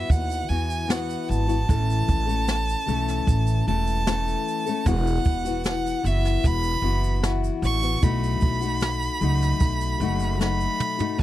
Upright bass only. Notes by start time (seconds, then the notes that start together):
0.09 D#2
0.49 E2
1.30 G#1
1.69 A1
2.08 A1
2.88 B1
3.27 A1
3.68 E1
4.86 E1
5.26 E1
6.04 F#1
6.44 E1
6.82 F#1
7.62 A1
8.02 B1
8.42 B1
9.21 C#2
9.60 B1
10.00 F#1
11.18 E2